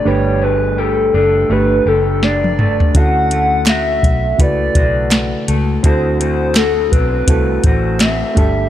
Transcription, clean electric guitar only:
X:1
M:4/4
L:1/8
Q:"Swing 16ths" 1/4=83
K:D
V:1 name="Clean electric guitar"
[G,A,DG] A, G D A, G D A, | F A, F2 A, F2 A, | [D,F] A, F =C A, F C G, |]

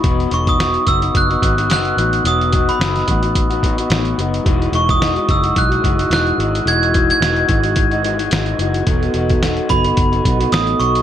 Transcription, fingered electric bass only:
X:1
M:4/4
L:1/8
Q:"Swing 16ths" 1/4=109
K:E
V:1 name="Fingered electric bass" clef=bass
E,,, E,,,2 F,,, F,,, G,,, F,,, A,,, | E,,,2 F,,, A,,,3 A,,, F,,, | E,,, E,,,2 F,,, B,,, F,,, E,,, G,,, | E,,,2 E,,, G,,,3 G,,, F,,, |
E,,, E,,,2 F,,, F,,, B,,, A,,, B,,, |]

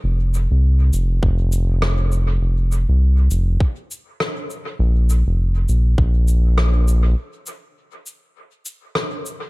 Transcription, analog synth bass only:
X:1
M:4/4
L:1/16
Q:"Swing 16ths" 1/4=101
K:Bbmix
V:1 name="Analog synth bass" clef=bass
F,,,3 C,,3 F,,,2 F,,,8 | F,,,3 C,,3 F,,,2 z8 | B,,,3 F,,,3 B,,,2 B,,,8 | z16 |]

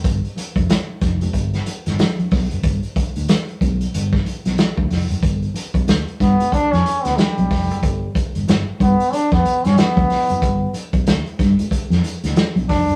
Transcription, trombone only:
X:1
M:4/4
L:1/16
Q:"Swing 16ths" 1/4=93
K:Gmix
V:1 name="Trombone"
z16 | z16 | z6 B,2 D ^C2 B, G,4- | G,2 z4 B,2 D B,2 ^C B,4- |
B,2 z12 D2 |]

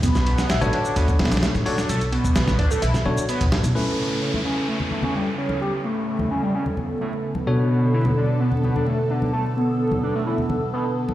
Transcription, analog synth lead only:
X:1
M:4/4
L:1/16
Q:1/4=129
K:Bm
V:1 name="Analog synth lead"
B, B, B,2 E B, D2 B, z B, D A, z D2 | A z B,4 D A, E z3 B, z3 | A, A, A,2 C A, C2 A, z A, C G, z C2 | G z A,4 C G, C z3 A, z3 |
B, B, B,2 E B, D2 B, z B, D A, z D2 | A z B,4 D A, E z3 B, z3 |]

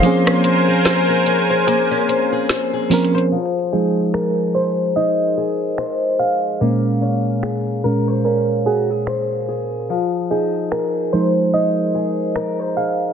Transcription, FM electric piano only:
X:1
M:4/4
L:1/16
Q:"Swing 16ths" 1/4=73
K:Bbm
V:1 name="FM electric piano"
[cf] z12 z3 | z2 A2 B2 c2 e6 f2- | f8 B2 A4 z2 | z2 A2 B2 c2 e6 f2 |]
V:2 name="FM electric piano"
[F,B,CDA]6 z8 [F,B,CDB]2 | z2 [F,A,E]6 z8 | [B,,A,D]6 [B,,A,D]2 z8 | z6 [F,A,E]6 z4 |]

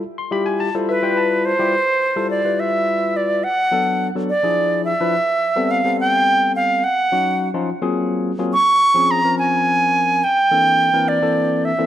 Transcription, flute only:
X:1
M:6/8
L:1/8
Q:3/8=71
K:Flyd
V:1 name="Flute"
z3 B2 c- | c2 d e2 d | ^f2 z d2 e- | e2 f g2 f |
_g2 z4 | _d'2 _b _a3 | g3 d2 e |]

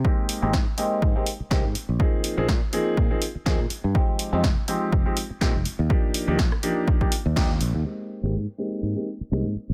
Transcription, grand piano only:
X:1
M:4/4
L:1/16
Q:"Swing 16ths" 1/4=123
K:Ablyd
V:1 name="Grand piano"
[A,B,CEG]3 [A,B,CEG] z2 [A,B,CEG]3 [A,B,CEG] z2 [A,B,CEG] z3 | [F,B,CEA]3 [F,B,CEA] z2 [F,B,CEA]3 [F,B,CEA] z2 [F,B,CEA] z3 | [F,A,CEG]3 [F,A,CEG] z2 [F,A,CEG]3 [F,A,CEG] z2 [F,A,CEG] z3 | [F,B,DEG]3 [F,B,DEG] z2 [F,B,DEG]3 [F,B,DEG] z2 [F,B,DEG] z3 |
[A,B,CEG]3 [A,B,CEG] z2 [A,B,CEG]3 [A,B,CEG] z2 [A,B,CEG] z3 |]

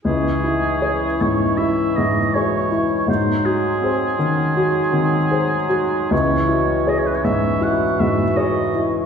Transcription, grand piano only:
X:1
M:4/4
L:1/8
Q:1/4=80
K:C#m
V:1 name="Grand piano"
C,, E [Gc] G,, E G,, [Gc] E | G,, F [G^B] D, F D, [GB] F | C,, E [Gc] G,, E G,, [Gc] E |]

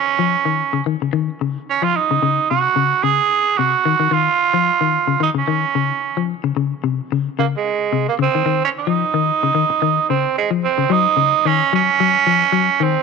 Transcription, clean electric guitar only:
X:1
M:4/4
L:1/16
Q:"Swing 16ths" 1/4=111
K:Ebdor
V:1 name="Clean electric guitar" clef=bass
z F,2 E,2 D, E, D, E,2 D,2 z F,2 D, | D,2 C,2 D,2 D,2 z2 C,2 E, E, E,2 | z F,2 E,2 D, E, D, E,2 D,2 z F,2 D, | D,2 C,2 D,2 D,2 z2 C,2 D, E, E,2 |
z F,2 E,2 D, E, z E,2 D,2 z F,2 D, | G,2 D,2 E,2 G,2 G,2 F,2 G,2 E,2 |]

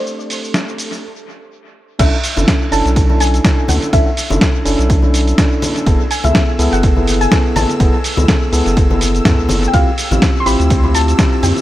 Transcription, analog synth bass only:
X:1
M:4/4
L:1/16
Q:"Swing 16ths" 1/4=124
K:Bdor
V:1 name="Analog synth bass" clef=bass
z16 | B,,, z2 F,,, z2 F,,, B,,,4- B,,, z2 D,, z | B,,, z2 F,,, z2 F,,, B,,,4- B,,, z4 | F,,, z2 C,, z2 C,, F,,,4- F,,, z2 A,,, z |
F,,, z2 C,, z2 C,, F,,,4- F,,, F,, C,, F,,, z | D,, z2 A,,, z2 A,,, D,,4- D,, z2 =F,, z |]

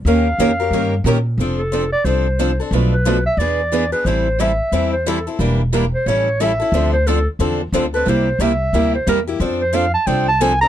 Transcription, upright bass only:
X:1
M:4/4
L:1/8
Q:"Swing" 1/4=180
K:F
V:1 name="Upright bass" clef=bass
_E,,2 F,,2 G,,2 B,,2 | F,,,4 C,,4 | =B,,,4 E,,4 | A,,,4 E,,4 |
E,,,4 A,,,4 | D,,4 E,,2 D,,2 | C,,2 C,,2 D,,2 E,,2 | F,,4 C,,4 |]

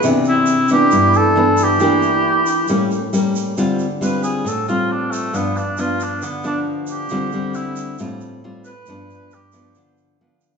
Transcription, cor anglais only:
X:1
M:4/4
L:1/8
Q:1/4=136
K:Ddor
V:1 name="Cor anglais"
z E2 G2 A2 G- | G6 z2 | z2 B _A =A F D A, | B, D F D B, D z G- |
G2 E2 z3 B- | B2 G2 z4 |]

